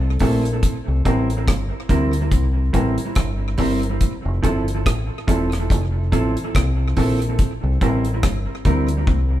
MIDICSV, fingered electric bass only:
0, 0, Header, 1, 2, 480
1, 0, Start_track
1, 0, Key_signature, -1, "major"
1, 0, Tempo, 845070
1, 358, Time_signature, 4, 2, 24, 8
1, 5339, End_track
2, 0, Start_track
2, 0, Title_t, "Fingered electric bass"
2, 0, Program_c, 0, 33
2, 0, Note_on_c, 0, 36, 103
2, 105, Note_off_c, 0, 36, 0
2, 120, Note_on_c, 0, 34, 105
2, 345, Note_off_c, 0, 34, 0
2, 500, Note_on_c, 0, 36, 93
2, 595, Note_off_c, 0, 36, 0
2, 601, Note_on_c, 0, 33, 101
2, 825, Note_off_c, 0, 33, 0
2, 840, Note_on_c, 0, 31, 101
2, 967, Note_off_c, 0, 31, 0
2, 1078, Note_on_c, 0, 38, 89
2, 1303, Note_off_c, 0, 38, 0
2, 1318, Note_on_c, 0, 36, 94
2, 1543, Note_off_c, 0, 36, 0
2, 1556, Note_on_c, 0, 33, 97
2, 1685, Note_off_c, 0, 33, 0
2, 1798, Note_on_c, 0, 31, 100
2, 2023, Note_off_c, 0, 31, 0
2, 2040, Note_on_c, 0, 31, 94
2, 2265, Note_off_c, 0, 31, 0
2, 2417, Note_on_c, 0, 29, 94
2, 2513, Note_off_c, 0, 29, 0
2, 2522, Note_on_c, 0, 31, 107
2, 2745, Note_off_c, 0, 31, 0
2, 2764, Note_on_c, 0, 33, 92
2, 2888, Note_off_c, 0, 33, 0
2, 3002, Note_on_c, 0, 28, 90
2, 3225, Note_off_c, 0, 28, 0
2, 3243, Note_on_c, 0, 29, 108
2, 3466, Note_off_c, 0, 29, 0
2, 3483, Note_on_c, 0, 33, 93
2, 3608, Note_off_c, 0, 33, 0
2, 3723, Note_on_c, 0, 36, 106
2, 3945, Note_off_c, 0, 36, 0
2, 3963, Note_on_c, 0, 34, 100
2, 4185, Note_off_c, 0, 34, 0
2, 4336, Note_on_c, 0, 36, 105
2, 4432, Note_off_c, 0, 36, 0
2, 4442, Note_on_c, 0, 33, 101
2, 4665, Note_off_c, 0, 33, 0
2, 4680, Note_on_c, 0, 31, 89
2, 4806, Note_off_c, 0, 31, 0
2, 4918, Note_on_c, 0, 38, 92
2, 5143, Note_off_c, 0, 38, 0
2, 5157, Note_on_c, 0, 36, 98
2, 5339, Note_off_c, 0, 36, 0
2, 5339, End_track
0, 0, End_of_file